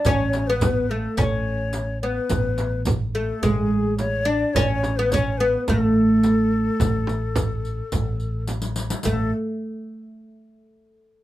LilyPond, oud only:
\new Staff \with { instrumentName = "Oud" } { \time 4/4 \tempo 4 = 107 cis'8. b8. a8 cis'4. b8~ | b4 r8 a8 gis4. d'8 | cis'8. b16 cis'8 b8 a2~ | a2. r4 |
a8 r2. r8 | }